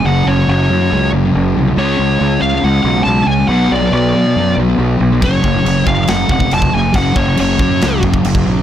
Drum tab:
CC |----------------|----------------|----------------|x---x---x---x---|
SD |----------------|----------------|----------------|--------o-------|
BD |----------------|----------------|----------------|o-o---o---oo-o--|

CC |x---x---x---x---|
SD |--------o-------|
BD |o-o---o---oo-o--|